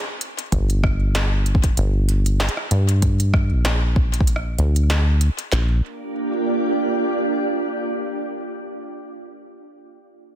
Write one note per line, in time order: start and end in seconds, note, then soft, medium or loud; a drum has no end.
0.21 closed hi-hat medium
0.39 closed hi-hat medium
0.52 1.71 G1 loud
0.52 kick loud
0.52 closed hi-hat medium
0.70 closed hi-hat medium
0.84 kick loud
0.84 cross-stick medium
1.15 snare loud
1.15 closed hi-hat medium
1.46 closed hi-hat soft
1.55 kick loud
1.64 kick loud
1.64 closed hi-hat medium
1.77 2.49 G1 medium
1.77 closed hi-hat medium
2.09 closed hi-hat soft
2.26 closed hi-hat medium
2.40 snare loud
2.49 closed hi-hat medium
2.57 cross-stick medium
2.71 3.53 G2 medium
2.71 closed hi-hat medium
2.89 closed hi-hat medium
3.02 kick loud
3.02 closed hi-hat medium
3.20 closed hi-hat medium
3.34 kick loud
3.34 cross-stick medium
3.51 4.58 A#1 loud
3.65 snare loud
3.65 closed hi-hat medium
3.96 kick loud
4.14 closed hi-hat medium
4.20 kick loud
4.27 closed hi-hat medium
4.36 cross-stick medium
4.58 5.30 D2 medium
4.58 closed hi-hat soft
4.76 closed hi-hat soft
4.90 snare loud
4.90 closed hi-hat soft
5.21 closed hi-hat medium
5.39 closed hi-hat medium
5.52 5.81 A#1 medium
5.52 7.98 A#3 medium
5.52 snare loud
5.52 clap medium
5.63 7.98 D4 medium
5.73 7.98 F4 medium
5.81 7.98 G4 medium
5.91 7.99 D5 medium